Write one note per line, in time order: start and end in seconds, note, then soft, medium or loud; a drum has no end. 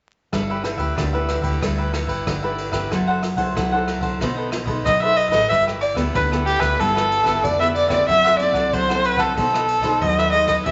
0.32 0.74 G1 medium
0.32 0.94 G3 medium
0.32 0.48 D4 soft
0.32 0.52 E4 medium
0.32 0.48 G4 soft
0.32 0.52 A4 medium
0.32 0.52 B4 medium
0.32 0.48 B4 soft
0.32 0.49 E5 medium
0.32 kick medium
0.32 cross-stick medium
0.32 ride soft
0.50 0.63 G4 medium
0.50 0.63 B4 medium
0.50 0.63 E5 medium
0.63 0.95 E4 medium
0.63 0.95 A4 soft
0.63 0.95 B4 medium
0.63 muted cavaquinho stroke soft
0.63 cross-stick medium
0.63 ride soft
0.77 0.92 D2 medium
0.77 0.95 G4 soft
0.77 0.95 B4 soft
0.77 0.94 E5 medium
0.77 kick medium
0.77 ride soft
0.96 1.39 D2 medium
0.96 1.59 D3 medium
0.96 1.12 D4 medium
0.96 1.12 G4 soft
0.96 1.12 B4 soft
0.96 1.12 E5 medium
0.96 kick medium
0.96 cross-stick medium
0.96 ride soft
1.13 1.57 E4 medium
1.13 1.43 G4 soft
1.13 1.58 A4 medium
1.13 1.42 B4 medium
1.13 1.58 B4 medium
1.13 1.41 E5 medium
1.29 cross-stick medium
1.29 ride soft
1.41 1.57 D2 medium
1.41 1.60 G4 medium
1.41 1.60 B4 medium
1.41 1.59 E5 medium
1.41 kick medium
1.41 ride soft
1.61 2.04 D2 medium
1.61 2.24 G3 medium
1.61 1.77 D4 soft
1.61 1.81 E4 medium
1.61 1.77 G4 soft
1.61 1.81 A4 medium
1.61 1.77 B4 medium
1.61 1.82 B4 medium
1.61 1.76 E5 medium
1.61 kick medium
1.61 cross-stick medium
1.61 ride medium
1.77 1.92 G4 soft
1.77 1.92 B4 medium
1.77 1.92 E5 medium
1.92 2.37 E4 medium
1.92 2.37 A4 medium
1.92 2.38 B4 soft
1.92 muted cavaquinho stroke soft
1.92 cross-stick medium
1.92 ride soft
2.06 2.22 G1 medium
2.06 2.41 G4 medium
2.06 2.41 B4 medium
2.06 2.40 E5 medium
2.06 kick medium
2.06 ride soft
2.27 2.68 G1 medium
2.27 2.88 D3 medium
2.27 kick medium
2.27 cross-stick medium
2.27 ride soft
2.43 2.87 E4 medium
2.43 2.73 G4 soft
2.43 2.87 A4 medium
2.43 2.72 B4 medium
2.43 2.87 B4 medium
2.43 2.71 E5 medium
2.58 ride soft
2.71 2.87 G1 medium
2.71 2.90 G4 soft
2.71 2.89 B4 medium
2.71 2.89 E5 medium
2.71 kick medium
2.71 cross-stick medium
2.71 ride soft
2.90 3.33 F#1 medium
2.90 3.53 F#3 medium
2.90 3.06 E4 soft
2.90 3.22 E4 medium
2.90 3.06 A4 medium
2.90 3.22 A4 medium
2.90 3.07 C5 medium
2.90 3.22 C5 medium
2.90 3.06 F#5 medium
2.90 kick medium
2.90 cross-stick medium
2.90 ride soft
3.07 3.21 A4 medium
3.07 3.21 C5 medium
3.07 3.22 F#5 medium
3.22 muted cavaquinho stroke soft
3.22 cross-stick medium
3.22 ride soft
3.35 3.51 C2 medium
3.35 3.66 E4 medium
3.35 3.66 A4 medium
3.35 3.54 A4 soft
3.35 3.54 C5 medium
3.35 3.66 C5 medium
3.35 3.53 F#5 medium
3.35 kick medium
3.35 ride soft
3.55 3.98 C2 medium
3.55 4.18 F#3 medium
3.55 3.71 E4 soft
3.55 3.71 A4 medium
3.55 3.71 C5 soft
3.55 3.71 F#5 medium
3.55 kick medium
3.55 cross-stick medium
3.55 ride soft
3.72 4.17 E4 medium
3.72 4.02 A4 soft
3.72 4.17 A4 medium
3.72 4.01 C5 medium
3.72 4.17 C5 medium
3.72 4.00 F#5 medium
3.88 cross-stick medium
3.88 ride soft
4.00 4.16 C2 medium
4.00 4.19 A4 soft
4.00 4.18 C5 medium
4.00 4.18 F#5 medium
4.00 kick medium
4.00 ride soft
4.20 4.62 B1 medium
4.20 4.83 B3 medium
4.20 4.35 D#4 soft
4.20 4.65 D#4 medium
4.20 4.36 A4 medium
4.20 4.65 A4 medium
4.20 4.36 B4 medium
4.20 4.65 C5 medium
4.20 4.35 D#5 medium
4.20 kick medium
4.20 cross-stick medium
4.20 ride soft
4.36 4.50 A4 medium
4.36 4.50 B4 medium
4.36 4.50 D#5 medium
4.50 muted cavaquinho stroke soft
4.50 cross-stick medium
4.50 ride soft
4.65 4.81 B1 medium
4.65 4.96 D#4 medium
4.65 4.99 A4 medium
4.65 4.96 A4 medium
4.65 4.99 B4 medium
4.65 4.96 C5 medium
4.65 4.99 D#5 medium
4.65 kick medium
4.65 ride soft
4.86 5.27 B1 medium
4.86 5.47 F#3 medium
4.86 5.01 D#5 medium
4.86 kick medium
4.86 cross-stick medium
4.86 ride soft
5.01 5.30 D#4 medium
5.01 5.31 A4 medium
5.01 5.30 A4 medium
5.01 5.30 B4 medium
5.01 5.30 C5 medium
5.01 5.29 D#5 medium
5.01 5.18 E5 loud
5.16 5.30 D#5 medium
5.16 ride soft
5.30 5.45 A1 medium
5.30 5.92 E4 medium
5.30 5.92 A4 medium
5.30 5.48 A4 medium
5.30 5.48 B4 medium
5.30 5.93 B4 medium
5.30 5.47 D#5 medium
5.30 kick medium
5.30 cross-stick medium
5.30 ride soft
5.49 5.92 G1 medium
5.49 6.11 G3 medium
5.49 5.65 D4 soft
5.49 5.65 G4 medium
5.49 5.65 B4 medium
5.49 5.64 E5 medium
5.49 kick medium
5.49 ride soft
5.66 5.79 G4 medium
5.66 5.79 B4 medium
5.66 5.80 E5 medium
5.66 cross-stick medium
5.80 5.96 D5 medium
5.80 muted cavaquinho stroke soft
5.80 ride soft
5.94 6.10 D2 medium
5.94 6.24 B3 medium
5.94 6.25 E4 medium
5.94 6.13 G4 soft
5.94 6.25 A4 medium
5.94 6.12 B4 soft
5.94 6.12 E5 medium
5.94 kick medium
5.94 cross-stick medium
5.94 ride soft
6.13 6.56 D2 medium
6.13 6.76 D3 medium
6.13 6.29 D4 soft
6.13 6.29 G4 soft
6.13 6.29 B4 soft
6.13 6.30 B4 medium
6.13 6.29 E5 soft
6.13 kick medium
6.13 ride soft
6.31 6.74 B3 medium
6.31 6.75 E4 medium
6.31 6.60 G4 medium
6.31 6.75 A4 medium
6.31 6.59 B4 soft
6.31 6.58 E5 medium
6.31 cross-stick medium
6.46 6.61 G4 medium
6.46 ride soft
6.59 6.75 D2 medium
6.59 6.77 G4 medium
6.59 6.81 B4 medium
6.59 6.77 B4 medium
6.59 6.76 E5 medium
6.59 kick medium
6.59 cross-stick medium
6.59 ride medium
6.78 7.41 G3 medium
6.78 7.23 B3 medium
6.78 6.94 D4 soft
6.78 7.23 E4 medium
6.78 6.94 G4 soft
6.78 7.45 A4 medium
6.78 7.23 A4 medium
6.78 6.94 B4 soft
6.78 6.93 E5 medium
6.78 kick medium
6.78 ride medium
6.94 7.08 G4 soft
6.94 7.08 B4 medium
6.94 7.09 E5 medium
6.94 cross-stick medium
7.09 muted cavaquinho stroke soft
7.09 ride soft
7.23 7.39 G1 medium
7.23 7.54 B3 medium
7.23 7.54 E4 medium
7.23 7.57 G4 medium
7.23 7.54 A4 medium
7.23 7.57 B4 medium
7.23 7.56 E5 medium
7.23 kick soft
7.23 cross-stick medium
7.23 ride soft
7.44 7.99 F1 medium
7.44 8.05 D3 medium
7.44 7.59 D5 medium
7.44 kick medium
7.44 ride medium
7.59 7.88 B3 medium
7.59 7.88 E4 medium
7.59 7.89 G4 medium
7.59 7.88 A4 medium
7.59 7.88 B4 medium
7.59 7.87 E5 medium
7.59 7.67 E5 medium
7.59 cross-stick medium
7.75 7.90 D5 loud
7.75 ride soft
7.88 8.39 C4 medium
7.88 8.39 E4 medium
7.88 8.06 G4 medium
7.88 8.40 A4 medium
7.88 8.05 B4 medium
7.88 8.06 D5 medium
7.88 8.05 E5 medium
7.88 kick medium
7.88 cross-stick medium
7.88 ride soft
8.07 8.50 F#1 medium
8.07 8.70 F#3 medium
8.07 8.22 E4 soft
8.07 8.23 A4 soft
8.07 8.23 C5 medium
8.07 8.39 E5 loud
8.07 8.23 F#5 medium
8.07 kick medium
8.07 ride soft
8.24 8.38 A4 medium
8.24 8.39 C5 medium
8.24 8.39 F#5 medium
8.24 cross-stick medium
8.39 8.84 C4 medium
8.39 8.84 E4 medium
8.39 8.84 A4 medium
8.39 8.75 D5 medium
8.39 muted cavaquinho stroke soft
8.39 ride soft
8.52 8.68 C2 medium
8.52 8.71 A4 medium
8.52 8.70 C5 soft
8.52 8.70 F#5 medium
8.52 kick medium
8.52 cross-stick medium
8.52 ride soft
8.72 9.14 C2 medium
8.72 9.34 F#3 medium
8.72 8.87 E4 soft
8.72 8.88 A4 soft
8.72 9.07 C5 medium
8.72 8.88 C5 medium
8.72 8.87 F#5 medium
8.72 kick medium
8.72 ride soft
8.88 9.32 C4 medium
8.88 9.33 E4 medium
8.88 9.33 A4 medium
8.88 9.18 A4 soft
8.88 9.17 C5 medium
8.88 9.16 F#5 medium
8.88 cross-stick medium
9.04 9.21 B4 medium
9.04 ride soft
9.16 9.32 C2 loud
9.16 9.35 A4 soft
9.16 9.37 A4 medium
9.16 9.35 C5 medium
9.16 9.34 F#5 medium
9.16 kick medium
9.16 cross-stick medium
9.16 ride soft
9.36 9.78 B1 medium
9.36 9.98 B3 medium
9.36 9.52 D#4 soft
9.36 9.67 D#4 medium
9.36 9.52 A4 medium
9.36 10.03 A4 medium
9.36 9.68 A4 medium
9.36 9.52 B4 soft
9.36 9.68 C5 medium
9.36 9.52 D#5 medium
9.36 kick medium
9.36 ride soft
9.53 9.67 A4 medium
9.53 9.67 B4 medium
9.53 9.67 D#5 medium
9.53 cross-stick medium
9.67 muted cavaquinho stroke soft
9.67 ride soft
9.81 9.96 B1 medium
9.81 10.28 D#4 medium
9.81 10.28 A4 medium
9.81 10.16 A4 soft
9.81 10.15 B4 medium
9.81 10.28 C5 medium
9.81 10.15 D#5 medium
9.81 kick medium
9.81 cross-stick medium
9.81 ride soft
10.02 10.56 D#2 medium
10.02 10.63 F#3 soft
10.02 10.20 D#5 medium
10.02 kick medium
10.02 ride soft
10.17 10.47 A4 medium
10.17 10.46 B4 medium
10.17 10.45 D#5 medium
10.17 10.32 E5 medium
10.17 cross-stick medium
10.32 10.60 D#4 medium
10.32 10.61 A4 medium
10.32 10.61 C5 medium
10.32 10.48 D#5 medium
10.32 ride soft
10.46 10.64 A4 medium
10.46 10.63 B4 medium
10.46 10.63 D#5 medium
10.46 10.56 D#5 medium
10.46 kick medium
10.46 cross-stick medium
10.46 ride soft
10.65 10.71 E2 medium
10.65 10.71 E3 medium
10.65 10.71 D4 medium
10.65 10.71 D4 soft
10.65 10.71 G4 medium
10.65 10.71 B4 medium
10.65 10.71 E5 medium
10.65 kick medium
10.65 ride soft